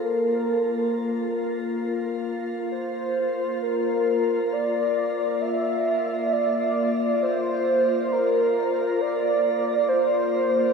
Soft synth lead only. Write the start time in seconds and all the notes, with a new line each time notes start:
0.04 A#4
2.71 C5
3.62 A#4
4.52 D5
5.42 E5
6.32 D5
7.23 C5
8.12 A#4
9.01 D5
9.88 C5